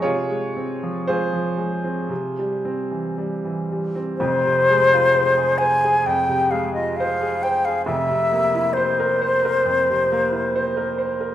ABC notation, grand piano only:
X:1
M:4/4
L:1/16
Q:1/4=65
K:Fm
V:1 name="Grand piano"
[FAd]4 [FAc]8 z4 | z16 | z16 |]
V:2 name="Grand piano"
C, A, C F, A, F, A, C C, G, C =E, G, E, G, C | [F,,,F,,] C, A, F c A c A F,, C, A, F c A c A | [F,,,F,,] C, B, =E c B c B F,, C, B, E c B c B |]